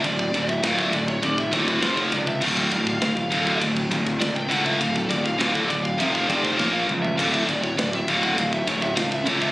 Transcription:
<<
  \new Staff \with { instrumentName = "Lead electric guitar" } { \time 4/4 \key d \minor \tempo 4 = 101 d''8. e''16 f''16 e''16 d''16 cis''16 d''16 e''16 cis''16 b'16 c''16 cis''16 d''16 e''16 | f''2 r4 d''16 g''16 fis''16 e''16 | f''16 a'16 d''16 f''16 f''16 a'16 d''16 f''16 e''16 f''16 d''16 c''16 cis''16 f''16 r16 e''16 | f''16 e''16 d''16 cis''16 d''16 e''16 f''16 fis''16 f''16 e''16 cis''16 e''16 f''16 e''16 cis''16 e''16 | }
  \new Staff \with { instrumentName = "Distorted electric guitar" } { \clef bass \time 4/4 \key d \minor <d, a,>8 <d, a,>8 <d, a, d>8 <d, a,>8 <d, a,>8 <d, a, d>8 <f, c f>8 <f, c>8 | <d, a, d>8 <d, a,>8 <d, a,>8 <d, a, d>8 <d, a,>8 <d, a,>8 <d, a,>8 <d, a, d>8 | <d, a,>8 <d, a,>8 <d, a, d>8 <d, a,>8 <f, c f>8 <f, c f>8 <bes, f bes>8 <bes, f>8 | <d, a, d>8 <d, a,>8 <d, a,>8 <d, a, d>8 <d, a,>8 <d, a,>8 <d, a,>8 <d, a, d>8 | }
  \new Staff \with { instrumentName = "Fingered electric bass" } { \clef bass \time 4/4 \key d \minor d,,8 d,,8 d,,8 d,,8 f,,8 d,,8 f,,8 cis,8 | d,,8 d,,8 d,,8 d,,8 d,,8 d,,8 cis,8 cis,8 | d,,8 d,,8 d,,8 d,,8 f,,8 f,,8 bes,,8 cis,8 | d,,8 d,,8 d,,8 d,,8 d,,8 d,,8 cis,8 cis,8 | }
  \new DrumStaff \with { instrumentName = "Drums" } \drummode { \time 4/4 <bd cymr>16 bd16 <bd cymr>16 bd16 <bd cymr sn>16 bd16 <bd cymr>16 bd16 <bd cymr>16 bd16 <bd cymr>16 bd16 <bd cymr sn>16 bd16 <bd cymr>16 bd16 | <cymc bd>16 bd16 <bd cymr>16 bd16 <bd cymr sn>16 bd16 <bd cymr>16 bd16 <bd cymr>16 bd16 <bd cymr>16 bd16 <bd cymr sn>16 bd16 <bd cymr>16 bd16 | <bd cymr>16 bd16 <bd cymr>16 bd16 <bd cymr sn>16 bd16 <bd cymr>16 bd16 <bd cymr>16 bd16 <bd cymr>16 bd16 <bd sn>8 toml16 tomfh16 | <cymc bd cymr>16 bd16 <bd cymr>16 bd16 <bd cymr sn>16 bd16 <bd cymr>16 bd16 <bd cymr>16 bd16 <bd cymr>16 bd16 <bd cymr sn>16 bd16 <bd cymr>16 bd16 | }
>>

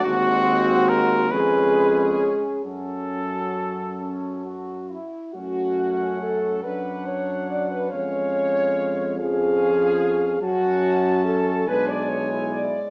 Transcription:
<<
  \new Staff \with { instrumentName = "Cornet" } { \time 6/8 \key fis \minor \tempo 4. = 47 fis'4 ais'8 b'4 r8 | a'2~ a'8 r8 | fis''4. fis''4. | eis''4. eis''4. |
a''4. gis''4. | }
  \new Staff \with { instrumentName = "French horn section" } { \time 6/8 \key fis \minor fis'4. gis'4. | fis'2~ fis'16 r8. | fis'4 a'8 b'8 cis''8 d''16 b'16 | cis''4. gis'4. |
fis'4 a'8 b'16 d''16 cis''8 d''8 | }
  \new Staff \with { instrumentName = "Trombone section" } { \time 6/8 \key fis \minor bis4. cis'4. | cis'4. cis'8 fis'8 e'8 | cis'4. d'4. | cis'4. cis'4. |
cis'4. d'8. e'8. | }
  \new Staff \with { instrumentName = "Trombone" } { \clef bass \time 6/8 \key fis \minor gis4. gis4. | fis2~ fis8 r8 | a4. fis4. | gis4. eis4. |
fis4. gis4. | }
  \new Staff \with { instrumentName = "Tuba" } { \clef bass \time 6/8 \key fis \minor dis,4. eis,4. | fis,2~ fis,8 r8 | fis,4. fis,4. | eis,2. |
fis,4. b,,4. | }
>>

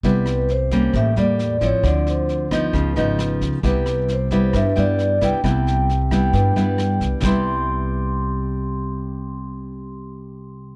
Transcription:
<<
  \new Staff \with { instrumentName = "Vibraphone" } { \time 4/4 \key c \major \tempo 4 = 134 b'4 c''4 e''8 d''4 cis''8 | d''8 c''4 r2 r8 | b'4 c''4 e''8 d''4 g''8~ | g''4. g''2 r8 |
c'''1~ | c'''1 | }
  \new Staff \with { instrumentName = "Nylon-string guitar" } { \time 4/4 \key c \major << { <g b e'>4 r8 <g bes des'>4 <g bes>4 <f c' e'>8~ | <f c' e'>4. <f b ees'>4 <f ces' ees'>4. | <g b e'>4. <g b e'>4 <g b e'>4 <g b e'>8 | <g b e'>4 r8 <g b e'>4 <g b e'>4. |
<c g b e'>1~ | <c g b e'>1 | } \\ { c2 a,2 | d2 des2 | c2 g,2 | c2 g,2 |
r1 | r1 | } >> }
  \new Staff \with { instrumentName = "Upright bass" } { \clef bass \time 4/4 \key c \major c,2 a,,8 e,4 a,,16 r16 | d,2 des,8 aes,,4 des,16 r16 | c,2 g,8 g,4 c,16 r16 | c,2 g,8 g,4 c,16 r16 |
c,1~ | c,1 | }
  \new DrumStaff \with { instrumentName = "Drums" } \drummode { \time 4/4 <bd sn>8 <ss sn>8 sn8 <bd sn>8 <bd ss sn>8 sn8 sn8 <bd sn>8 | <bd ss sn>8 sn8 sn8 <bd ss sn>8 <bd sn>8 sn8 <ss sn>8 <bd sn>8 | <bd sn>8 <ss sn>8 sn8 <bd sn>8 <bd ss sn>8 sn8 sn8 <bd sn>8 | <bd ss sn>8 sn8 sn8 <bd ss sn>8 <bd sn>8 sn8 <ss sn>8 <bd sn>8 |
<bd sn>4 r4 r4 r4 | r4 r4 r4 r4 | }
>>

